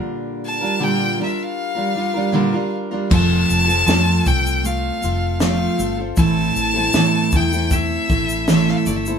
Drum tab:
CC |----------------|x---------------|----------------|
SH |----------------|--xxx-xxx-x-x-x-|x-x-x-xxx-xxx-xx|
SD |----------------|----o-------o---|----o-------oo--|
BD |----------------|o-----o---------|o-----o-o-o-----|